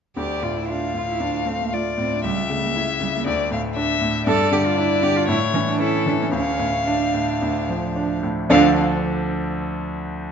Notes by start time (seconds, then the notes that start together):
0.16 D2 G4 D5
0.43 A2 F4
0.57 E4
0.68 D4 F4 F5
0.94 A2 F4
1.10 E4
1.20 D2 D4
1.46 A3 C4
1.61 A#3
1.73 A3 F4 D5
1.98 A2 C4
2.14 D4
2.24 C#2 G3 E5
2.50 C#3 A3
2.64 A#3
2.75 A3 E4
3.00 C#3 G3
3.16 A#3
3.26 D2 A3 D5
3.51 A2 F5
3.76 D4 E5
4.01 A2
4.27 G2 A4 D5
4.52 D3 G4
4.65 F4
4.77 D4 E4
5.03 D3 G4
5.16 F4
5.28 A2 E4 C#5
5.54 E3 C#4
5.68 D4
5.79 C#4 E4 A4
6.06 E3 D4
6.22 C#4
6.32 D2 C#4 F5
6.59 A2
6.87 D4
7.14 A2
7.42 D2
7.69 F3
7.96 D4
8.23 A2
8.50 D2 D3 F3 D4 A4 D5 F5